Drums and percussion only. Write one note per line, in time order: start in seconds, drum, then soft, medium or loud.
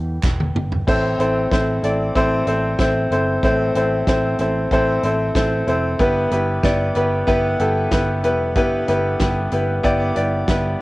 0.23 kick loud
0.23 snare medium
0.23 clap medium
0.40 high tom medium
0.56 mid tom medium
0.72 floor tom medium
0.88 kick medium
0.88 crash medium
1.20 closed hi-hat medium
1.51 kick medium
1.51 snare medium
1.51 closed hi-hat medium
1.83 closed hi-hat medium
2.15 kick medium
2.15 closed hi-hat medium
2.47 closed hi-hat medium
2.79 kick medium
2.79 snare medium
2.79 closed hi-hat medium
3.11 closed hi-hat medium
3.43 kick medium
3.43 closed hi-hat medium
3.75 closed hi-hat medium
4.07 kick medium
4.07 snare medium
4.07 closed hi-hat medium
4.39 closed hi-hat medium
4.71 kick medium
4.71 closed hi-hat medium
5.03 closed hi-hat medium
5.35 kick loud
5.35 snare medium
5.35 closed hi-hat medium
5.68 closed hi-hat medium
5.99 kick medium
5.99 closed hi-hat medium
6.31 closed hi-hat medium
6.64 kick medium
6.64 snare medium
6.64 closed hi-hat medium
6.95 closed hi-hat medium
7.27 kick medium
7.27 closed hi-hat medium
7.59 closed hi-hat medium
7.91 kick loud
7.91 snare medium
7.91 closed hi-hat medium
8.24 closed hi-hat medium
8.55 kick medium
8.55 closed hi-hat medium
8.88 closed hi-hat medium
9.20 kick medium
9.20 snare medium
9.20 closed hi-hat medium
9.51 closed hi-hat medium
9.84 kick medium
9.84 closed hi-hat medium
10.16 closed hi-hat medium
10.48 kick loud
10.48 snare medium
10.48 closed hi-hat medium